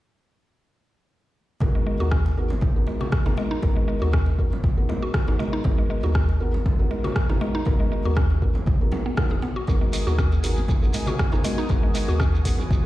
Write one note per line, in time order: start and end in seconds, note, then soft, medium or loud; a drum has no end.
1.60 1.94 G#1 medium
1.60 1.97 B3 medium
1.60 1.97 D#4 medium
1.60 1.97 F#4 medium
1.60 1.97 G#4 medium
1.60 1.97 A#4 loud
1.60 kick loud
1.60 muted conga soft
1.60 high conga medium
1.60 low conga medium
1.75 1.81 G#3 medium
1.87 1.99 G#3 medium
2.00 2.31 D#2 medium
2.00 2.09 B3 medium
2.00 2.09 D#4 medium
2.00 2.11 F#4 medium
2.00 2.09 F#4 medium
2.00 2.09 G#4 medium
2.00 2.09 A#4 medium
2.00 muted conga soft
2.11 2.24 C#4 medium
2.11 kick loud
2.11 cross-stick loud
2.26 muted conga medium
2.37 2.69 G#1 medium
2.37 2.48 B3 medium
2.37 2.48 D#4 medium
2.37 2.48 F#4 medium
2.37 2.48 G#4 medium
2.37 2.48 A#4 medium
2.50 muted conga soft
2.50 low conga medium
2.61 kick loud
2.61 high conga medium
2.75 2.84 G#1 medium
2.75 3.23 B3 medium
2.75 3.23 D#4 medium
2.75 3.23 F#4 medium
2.75 3.23 G#4 medium
2.75 3.23 A#4 medium
2.87 3.00 G#3 medium
2.87 muted conga medium
3.00 3.11 F#4 medium
3.00 high conga medium
3.12 kick loud
3.12 cross-stick loud
3.12 muted conga soft
3.26 3.34 G#1 loud
3.26 3.60 B3 medium
3.26 3.37 D#4 medium
3.26 3.60 D#4 medium
3.26 3.60 F#4 medium
3.26 3.60 G#4 medium
3.26 3.60 A#4 medium
3.26 high conga loud
3.37 3.50 G#3 loud
3.37 muted conga medium
3.51 3.62 D#4 loud
3.62 3.95 G#1 medium
3.62 3.99 B3 medium
3.62 3.99 D#4 medium
3.62 3.99 F#4 medium
3.62 3.99 G#4 medium
3.62 3.99 A#4 loud
3.62 kick loud
3.62 muted conga soft
3.62 high conga medium
3.62 low conga medium
3.77 3.83 G#3 medium
3.88 4.00 G#3 medium
4.01 4.33 D#2 medium
4.01 4.11 B3 medium
4.01 4.11 D#4 medium
4.01 4.11 F#4 medium
4.01 4.12 F#4 medium
4.01 4.11 G#4 medium
4.01 4.11 A#4 medium
4.01 muted conga soft
4.13 4.26 C#4 medium
4.13 kick loud
4.13 cross-stick loud
4.26 muted conga soft
4.39 4.71 G#1 medium
4.39 4.49 B3 medium
4.39 4.49 D#4 medium
4.39 4.49 F#4 medium
4.39 4.49 G#4 medium
4.39 4.49 A#4 medium
4.39 kick medium
4.52 muted conga soft
4.52 low conga medium
4.64 kick loud
4.64 high conga medium
4.77 4.86 G#1 loud
4.77 5.25 B3 medium
4.77 5.25 D#4 medium
4.77 5.25 F#4 medium
4.77 5.25 G#4 medium
4.77 5.25 A#4 medium
4.89 5.01 G#3 medium
4.89 muted conga medium
4.89 high conga medium
4.89 low conga loud
5.02 5.13 F#4 medium
5.14 kick loud
5.14 cross-stick loud
5.14 muted conga soft
5.14 high conga loud
5.28 5.36 G#1 loud
5.28 5.62 B3 medium
5.28 5.62 D#4 medium
5.28 5.38 D#4 medium
5.28 5.62 F#4 medium
5.28 5.62 G#4 medium
5.28 5.62 A#4 medium
5.28 low conga loud
5.39 5.52 G#3 loud
5.39 muted conga medium
5.39 high conga medium
5.53 5.64 D#4 loud
5.64 5.97 G#1 medium
5.64 6.00 B3 medium
5.64 6.00 D#4 medium
5.64 6.00 F#4 medium
5.64 6.00 G#4 medium
5.64 6.00 A#4 loud
5.64 kick loud
5.64 muted conga soft
5.64 high conga medium
5.64 low conga medium
5.78 5.85 G#3 medium
5.90 6.02 G#3 medium
6.03 6.35 D#2 medium
6.03 6.13 B3 medium
6.03 6.13 D#4 medium
6.03 6.12 F#4 medium
6.03 6.14 F#4 medium
6.03 6.12 G#4 medium
6.03 6.12 A#4 medium
6.03 muted conga soft
6.15 6.27 C#4 medium
6.15 kick loud
6.15 cross-stick loud
6.29 muted conga soft
6.40 6.73 G#1 medium
6.40 6.51 B3 medium
6.40 6.51 D#4 medium
6.40 6.51 F#4 medium
6.40 6.51 G#4 medium
6.40 6.51 A#4 medium
6.54 muted conga soft
6.54 low conga medium
6.66 kick loud
6.66 high conga loud
6.79 6.87 G#1 loud
6.79 7.26 B3 medium
6.79 7.26 D#4 medium
6.79 7.26 F#4 medium
6.79 7.26 G#4 medium
6.79 7.26 A#4 medium
6.91 7.03 G#3 medium
6.91 muted conga soft
7.04 7.15 F#4 medium
7.04 high conga loud
7.16 kick loud
7.16 cross-stick loud
7.16 muted conga soft
7.29 7.38 G#1 loud
7.29 7.64 B3 medium
7.29 7.40 D#4 medium
7.29 7.64 D#4 medium
7.29 7.64 F#4 medium
7.29 7.64 G#4 medium
7.29 7.64 A#4 medium
7.29 high conga medium
7.41 7.53 G#3 loud
7.41 muted conga soft
7.55 7.66 D#4 loud
7.65 7.99 G#1 medium
7.65 8.02 B3 medium
7.65 8.02 D#4 medium
7.65 8.02 F#4 medium
7.65 8.02 G#4 medium
7.65 8.02 A#4 loud
7.65 kick loud
7.65 muted conga soft
7.65 high conga medium
7.65 low conga loud
7.80 7.86 G#3 medium
7.92 8.04 G#3 medium
8.05 8.36 D#2 medium
8.05 8.14 B3 medium
8.05 8.14 D#4 medium
8.05 8.14 F#4 medium
8.05 8.16 F#4 medium
8.05 8.14 G#4 medium
8.05 8.14 A#4 medium
8.05 muted conga soft
8.17 8.29 C#4 medium
8.17 kick loud
8.17 cross-stick loud
8.30 muted conga soft
8.42 8.74 G#1 medium
8.42 8.53 B3 medium
8.42 8.53 D#4 medium
8.42 8.53 F#4 medium
8.42 8.53 G#4 medium
8.42 8.53 A#4 medium
8.42 kick medium
8.55 muted conga soft
8.55 low conga loud
8.66 kick loud
8.66 high conga medium
8.81 8.89 G#1 loud
8.81 9.15 B3 medium
8.81 9.15 D#4 medium
8.81 9.15 F#4 medium
8.81 9.15 G#4 medium
8.81 9.15 A#4 medium
8.92 9.00 B3 medium
8.92 muted conga soft
8.92 high conga medium
8.92 low conga loud
9.06 9.12 B3 medium
9.17 9.28 B3 medium
9.17 9.28 D#4 medium
9.17 9.28 F#4 medium
9.17 9.28 G#4 medium
9.17 9.28 A#4 medium
9.17 kick loud
9.17 cross-stick loud
9.17 muted conga soft
9.17 high conga medium
9.30 9.39 D#1 medium
9.30 9.42 G#4 medium
9.30 low conga medium
9.42 9.55 B3 medium
9.42 muted conga soft
9.42 high conga medium
9.56 9.67 F#4 medium
9.67 10.00 G#1 medium
9.67 10.04 B3 medium
9.67 12.86 B3 medium
9.67 10.04 D#4 medium
9.67 10.04 F#4 medium
9.67 12.86 F#4 medium
9.67 10.04 G#4 medium
9.67 10.04 A#4 loud
9.67 12.86 G#5 medium
9.67 12.86 D#6 medium
9.67 kick loud
9.67 muted conga soft
9.67 high conga medium
9.67 low conga medium
9.67 shekere soft
9.81 9.88 G#3 medium
9.93 10.05 G#3 medium
9.93 open hi-hat medium
9.93 shekere medium
10.06 10.38 D#2 medium
10.06 10.16 B3 medium
10.06 10.16 D#4 medium
10.06 10.16 F#4 medium
10.06 10.17 F#4 medium
10.06 10.16 G#4 medium
10.06 10.16 A#4 medium
10.06 muted conga soft
10.06 shekere soft
10.18 10.31 C#4 medium
10.18 kick loud
10.18 cross-stick medium
10.18 shekere soft
10.32 muted conga soft
10.32 shekere soft
10.43 10.76 G#1 medium
10.43 10.54 B3 medium
10.43 10.54 D#4 medium
10.43 10.54 F#4 medium
10.43 10.54 G#4 medium
10.43 10.54 A#4 medium
10.43 open hi-hat medium
10.43 shekere medium
10.56 muted conga soft
10.56 low conga medium
10.56 shekere soft
10.68 kick loud
10.68 high conga loud
10.68 shekere medium
10.82 10.91 G#1 loud
10.82 11.30 B3 medium
10.82 11.30 D#4 medium
10.82 11.30 F#4 medium
10.82 11.30 G#4 medium
10.82 11.30 A#4 medium
10.82 shekere soft
10.93 11.06 G#3 medium
10.93 mid tom medium
10.93 open hi-hat medium
10.93 muted conga soft
10.93 shekere medium
11.06 11.18 F#4 medium
11.06 high conga loud
11.06 shekere soft
11.19 kick loud
11.19 cross-stick loud
11.19 mid tom medium
11.19 muted conga soft
11.19 shekere soft
11.32 11.41 G#1 loud
11.32 11.67 B3 medium
11.32 11.67 D#4 medium
11.32 11.43 D#4 medium
11.32 11.67 F#4 medium
11.32 11.67 G#4 medium
11.32 11.67 A#4 medium
11.32 high conga loud
11.32 shekere soft
11.44 11.57 G#3 medium
11.44 open hi-hat medium
11.44 muted conga soft
11.44 shekere medium
11.58 11.69 D#4 loud
11.58 shekere soft
11.69 12.02 G#1 loud
11.69 12.05 B3 medium
11.69 12.05 D#4 medium
11.69 12.05 F#4 medium
11.69 12.05 G#4 medium
11.69 12.05 A#4 loud
11.69 kick loud
11.69 muted conga soft
11.69 high conga medium
11.69 low conga medium
11.69 shekere soft
11.83 11.90 G#3 medium
11.95 12.07 G#3 medium
11.95 open hi-hat medium
11.95 shekere medium
12.08 12.40 D#2 medium
12.08 12.17 B3 medium
12.08 12.17 D#4 medium
12.08 12.17 F#4 medium
12.08 12.19 F#4 medium
12.08 12.17 G#4 medium
12.08 12.17 A#4 medium
12.08 muted conga soft
12.08 shekere soft
12.20 12.32 C#4 medium
12.20 kick loud
12.20 cross-stick medium
12.20 shekere medium
12.32 muted conga soft
12.32 shekere soft
12.45 12.78 G#1 medium
12.45 12.56 B3 medium
12.45 12.56 D#4 medium
12.45 12.56 F#4 medium
12.45 12.56 G#4 medium
12.45 12.56 A#4 medium
12.45 kick medium
12.45 open hi-hat medium
12.45 shekere medium
12.58 muted conga soft
12.58 low conga loud
12.58 shekere soft
12.71 kick loud
12.71 high conga medium
12.71 shekere medium